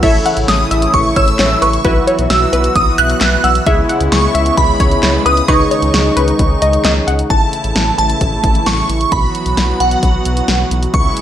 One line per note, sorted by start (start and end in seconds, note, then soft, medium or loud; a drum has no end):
0.00 0.19 A1 loud
0.00 1.83 C#3 medium
0.00 3.63 E3 medium
0.00 1.83 A3 medium
0.00 1.81 E4 medium
0.00 1.83 E4 medium
0.00 1.81 A4 medium
0.00 1.81 C#5 medium
0.00 1.81 E5 medium
0.00 0.21 E5 loud
0.00 kick loud
0.00 crash medium
0.26 0.43 F#5 medium
0.26 closed hi-hat medium
0.37 0.45 A1 medium
0.37 closed hi-hat medium
0.48 0.64 A1 loud
0.48 0.91 D#6 medium
0.48 snare loud
0.48 closed hi-hat medium
0.71 0.87 A1 loud
0.71 1.03 E5 medium
0.71 closed hi-hat medium
0.82 closed hi-hat medium
0.94 1.10 A1 loud
0.94 1.17 C#6 loud
0.94 kick medium
0.94 closed hi-hat medium
1.16 1.32 A1 loud
1.16 1.25 C#5 medium
1.16 1.63 E6 loud
1.16 kick medium
1.16 closed hi-hat medium
1.28 closed hi-hat soft
1.39 1.55 A1 loud
1.39 1.48 C#5 medium
1.39 snare loud
1.39 clap medium
1.39 closed hi-hat medium
1.62 1.78 A1 loud
1.62 1.71 B4 medium
1.62 1.83 C#6 medium
1.62 closed hi-hat medium
1.73 closed hi-hat soft
1.85 2.01 B1 loud
1.85 3.65 F#3 medium
1.85 5.45 B3 medium
1.85 3.63 E4 medium
1.85 3.65 F#4 medium
1.85 3.63 F#4 medium
1.85 3.63 B4 medium
1.85 2.02 B4 loud
1.85 3.63 E5 medium
1.85 kick loud
1.85 closed hi-hat medium
2.07 2.25 C#5 medium
2.07 closed hi-hat medium
2.19 2.27 B1 loud
2.19 closed hi-hat medium
2.30 2.46 B1 loud
2.30 2.77 E6 medium
2.30 snare loud
2.30 closed hi-hat medium
2.53 2.69 B1 loud
2.53 2.71 B4 medium
2.53 closed hi-hat medium
2.64 closed hi-hat medium
2.76 2.91 B1 loud
2.76 2.86 D#6 loud
2.76 kick medium
2.76 closed hi-hat medium
2.98 3.14 B1 loud
2.98 3.16 E5 medium
2.98 3.45 F#6 loud
2.98 closed hi-hat medium
3.10 closed hi-hat medium
3.21 3.37 B1 loud
3.21 3.30 E5 medium
3.21 snare loud
3.21 clap medium
3.21 closed hi-hat medium
3.44 3.60 B1 loud
3.44 3.53 F#5 medium
3.44 3.54 E6 medium
3.44 closed hi-hat medium
3.55 closed hi-hat medium
3.66 3.82 C#2 loud
3.66 7.26 C#3 medium
3.66 7.26 G#3 medium
3.66 5.46 E4 medium
3.66 5.45 E4 medium
3.66 5.45 G#4 medium
3.66 5.45 C#5 medium
3.66 5.45 E5 medium
3.66 3.84 E5 loud
3.66 kick loud
3.66 closed hi-hat medium
3.89 4.07 F#5 medium
3.89 closed hi-hat medium
4.01 4.08 C#2 medium
4.01 closed hi-hat medium
4.12 4.28 C#2 loud
4.12 4.54 C#6 medium
4.12 snare loud
4.12 closed hi-hat medium
4.35 4.51 C#2 loud
4.35 4.67 E5 medium
4.35 closed hi-hat medium
4.46 closed hi-hat medium
4.57 4.73 C#2 loud
4.57 5.28 B5 medium
4.57 kick medium
4.57 closed hi-hat medium
4.80 4.96 C#2 medium
4.80 4.89 C#5 medium
4.80 kick medium
4.80 closed hi-hat medium
4.91 closed hi-hat medium
5.03 5.19 C#2 loud
5.03 5.12 C#5 medium
5.03 snare loud
5.03 clap medium
5.03 closed hi-hat medium
5.26 5.41 C#2 loud
5.26 5.34 B4 medium
5.26 5.49 D#6 loud
5.26 closed hi-hat medium
5.37 closed hi-hat soft
5.48 5.64 C#2 loud
5.48 7.28 D#3 medium
5.48 7.28 D#4 medium
5.48 7.27 D#4 medium
5.48 7.27 G#4 medium
5.48 5.66 B4 loud
5.48 7.27 C#5 medium
5.48 7.27 D#5 medium
5.48 6.81 C#6 loud
5.48 kick loud
5.48 closed hi-hat medium
5.71 5.89 C#5 medium
5.71 closed hi-hat medium
5.82 5.90 C#2 loud
5.82 closed hi-hat medium
5.94 6.10 C#2 loud
5.94 snare loud
5.94 closed hi-hat medium
6.17 6.32 C#2 loud
6.17 6.34 B4 medium
6.17 closed hi-hat medium
6.28 closed hi-hat medium
6.39 6.55 C#2 loud
6.39 kick medium
6.39 closed hi-hat medium
6.62 6.78 C#2 loud
6.62 6.80 D#5 medium
6.62 closed hi-hat medium
6.73 closed hi-hat soft
6.85 7.01 C#2 loud
6.85 6.94 D#5 medium
6.85 snare loud
6.85 clap medium
6.85 closed hi-hat medium
7.07 7.23 C#2 loud
7.07 7.16 F#5 medium
7.07 closed hi-hat medium
7.19 closed hi-hat medium
7.30 7.46 A1 loud
7.30 9.10 C#3 medium
7.30 10.90 E3 medium
7.30 9.10 A3 medium
7.30 9.10 E4 medium
7.30 7.97 A5 medium
7.30 kick loud
7.30 closed hi-hat medium
7.53 closed hi-hat medium
7.64 7.72 A1 medium
7.64 closed hi-hat medium
7.76 7.91 A1 loud
7.76 snare loud
7.76 closed hi-hat medium
7.98 8.14 A1 loud
7.98 8.69 A5 medium
7.98 closed hi-hat medium
8.10 closed hi-hat soft
8.21 8.37 A1 loud
8.21 kick medium
8.21 closed hi-hat medium
8.44 8.60 A1 loud
8.44 kick medium
8.44 closed hi-hat medium
8.55 closed hi-hat soft
8.66 8.82 A1 loud
8.66 9.13 C#6 loud
8.66 snare loud
8.66 closed hi-hat medium
8.89 9.05 A1 medium
8.89 closed hi-hat medium
9.01 closed hi-hat soft
9.12 9.28 B1 loud
9.12 10.92 F#3 medium
9.12 10.92 B3 medium
9.12 10.92 F#4 medium
9.12 9.82 B5 loud
9.12 kick loud
9.12 closed hi-hat medium
9.35 closed hi-hat medium
9.46 9.54 B1 loud
9.46 closed hi-hat medium
9.57 9.73 B1 loud
9.57 snare loud
9.57 closed hi-hat medium
9.80 9.96 B1 medium
9.80 10.67 F#5 medium
9.80 closed hi-hat medium
9.91 closed hi-hat medium
10.03 10.19 B1 loud
10.03 kick medium
10.03 closed hi-hat medium
10.25 10.41 B1 medium
10.25 closed hi-hat medium
10.37 closed hi-hat soft
10.48 10.64 B1 loud
10.48 snare loud
10.48 closed hi-hat medium
10.71 10.87 B1 loud
10.71 closed hi-hat medium
10.83 closed hi-hat soft
10.94 11.10 C#2 loud
10.94 11.21 C#3 medium
10.94 11.21 G#3 medium
10.94 11.21 B3 medium
10.94 11.21 E4 medium
10.94 11.21 C#6 medium
10.94 kick loud
10.94 closed hi-hat medium
11.17 closed hi-hat medium